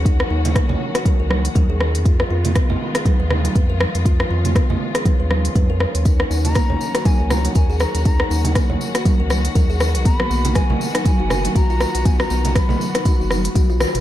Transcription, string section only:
0.00 6.01 D#3 medium
0.00 2.01 F#3 medium
0.00 2.01 A#3 medium
0.00 2.01 C#4 medium
0.00 2.01 F#4 medium
2.05 6.02 F3 medium
2.05 6.01 G#3 medium
2.05 4.04 B3 medium
2.05 6.02 F4 medium
4.05 10.01 C#4 medium
6.05 14.01 D#3 medium
6.05 14.01 F#3 medium
6.05 14.01 A#3 medium
6.05 14.01 F#4 medium
10.06 14.01 B3 medium

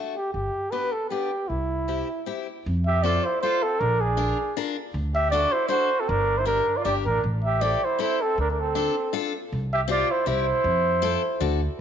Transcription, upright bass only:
0.34 0.48 G1 medium
1.50 2.00 C2 medium
2.66 3.16 F2 medium
3.81 4.30 A#1 medium
4.94 5.44 D2 medium
6.09 6.58 G1 medium
6.85 7.04 G1 medium
7.06 7.21 A1 medium
7.24 7.73 A1 medium
8.38 8.87 D2 medium
9.52 10.01 C2 medium
10.27 10.51 C2 medium
10.64 11.14 F2 medium
11.41 11.66 D2 loud

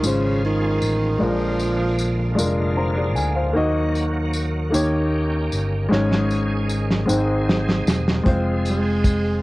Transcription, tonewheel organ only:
0.00 1.19 F3 soft
0.00 3.52 G#3 soft
0.00 1.19 F4 soft
0.00 1.19 G#4 medium
1.21 3.54 D3 medium
1.21 5.87 A#3 soft
1.21 3.54 F4 medium
3.56 8.23 D#3 soft
3.56 4.73 F#3 soft
3.56 4.73 F#4 medium
4.73 7.06 C#4 soft
4.73 5.90 G4 soft
5.92 9.41 G#3 soft
5.92 7.07 G#4 medium
7.08 9.42 C4 soft
7.08 9.41 G#4 medium
8.26 9.42 F3 soft

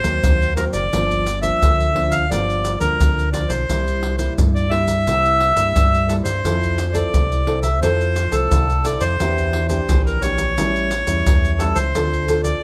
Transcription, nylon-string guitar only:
0.00 0.20 G#2 medium
0.04 0.52 F#3 medium
0.04 0.52 A#3 medium
0.04 0.52 C4 medium
0.24 0.89 D#3 medium
0.58 0.87 F#3 soft
0.58 0.87 A#3 soft
0.58 0.87 C4 medium
0.93 1.58 G2 medium
0.93 1.25 F3 medium
0.93 1.25 A#3 medium
0.93 1.26 D4 medium
1.42 1.90 F3 medium
1.42 1.90 A#3 medium
1.42 1.90 D4 medium
1.62 2.27 D3 medium
1.95 2.24 F3 medium
1.95 2.25 A#3 medium
1.95 2.25 D4 medium
2.31 2.96 G2 medium
2.31 2.77 F3 medium
2.31 2.77 A#3 medium
2.31 2.77 D4 medium
2.80 3.28 F3 medium
2.80 3.28 A#3 medium
2.80 3.28 D4 medium
3.00 3.65 D3 medium
3.33 3.63 F3 soft
3.33 3.63 A#3 soft
3.33 3.63 D4 medium
3.69 4.35 C3 medium
3.69 4.15 G3 soft
3.69 4.15 A#3 medium
3.69 4.16 E4 medium
4.18 4.66 G3 medium
4.18 4.66 A#3 medium
4.18 4.66 E4 medium
4.38 5.04 G2 medium
4.71 4.92 G3 medium
4.71 4.92 A#3 medium
4.71 4.92 E4 medium
5.07 5.72 C3 medium
5.07 5.53 G3 medium
5.07 5.53 A#3 medium
5.07 5.54 E4 medium
5.56 6.04 G3 medium
5.56 6.04 A#3 medium
5.56 6.04 E4 medium
5.76 6.41 G2 medium
6.09 6.30 G3 soft
6.09 6.30 A#3 soft
6.09 6.30 E4 medium
6.45 7.10 F3 medium
6.45 6.77 C4 medium
6.45 6.77 E4 medium
6.45 6.77 A4 medium
6.94 7.41 C4 medium
6.94 7.42 E4 medium
6.94 7.42 A4 medium
7.14 7.79 C3 medium
7.47 7.68 C4 medium
7.47 7.68 E4 medium
7.47 7.68 A4 medium
7.83 8.48 F3 medium
7.83 8.15 C4 medium
7.83 8.15 E4 medium
7.83 8.16 A4 medium
8.32 8.79 C4 medium
8.32 8.79 E4 medium
8.32 8.80 A4 medium
8.52 9.17 C3 medium
8.85 9.14 C4 medium
8.85 9.15 E4 soft
8.85 9.15 A4 medium
9.21 9.86 E3 medium
9.21 9.67 A#3 medium
9.21 9.67 D4 soft
9.21 9.67 G4 medium
9.70 10.17 A#3 medium
9.70 10.17 D4 medium
9.70 10.17 G4 medium
9.90 10.55 E3 medium
10.23 10.52 A#3 medium
10.23 10.52 D4 medium
10.23 10.53 G4 medium
10.58 11.23 A2 medium
10.58 10.90 G3 medium
10.58 10.91 C#4 medium
10.58 10.91 E4 medium
11.07 11.55 G3 medium
11.07 11.55 C#4 medium
11.07 11.55 E4 medium
11.27 11.92 E3 soft
11.60 11.81 G3 soft
11.60 11.81 C#4 medium
11.60 11.81 E4 medium
11.95 12.61 D3 soft
11.95 12.24 C4 medium
11.95 12.25 F4 medium
11.95 12.25 A4 medium
12.29 12.58 C4 medium
12.29 12.58 F4 medium
12.29 12.59 A4 medium

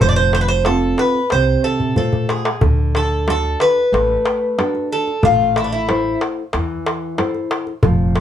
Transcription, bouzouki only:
0.02 0.08 C5 loud
0.09 0.15 D5 medium
0.16 0.33 C5 loud
0.35 0.41 C5 loud
0.41 0.48 B4 medium
0.48 0.65 C5 loud
0.66 0.96 A4 medium
0.99 1.29 B4 medium
1.32 1.64 C5 medium
1.64 1.95 A4 medium
1.98 2.28 A4 medium
2.30 2.60 G#4 medium
2.96 3.29 A4 medium
3.30 3.59 A4 loud
3.61 4.87 B4 loud
4.92 5.25 A4 medium
5.25 5.57 F4 medium
5.57 5.63 E4 medium
5.64 5.71 D4 medium
5.72 6.19 E4 medium

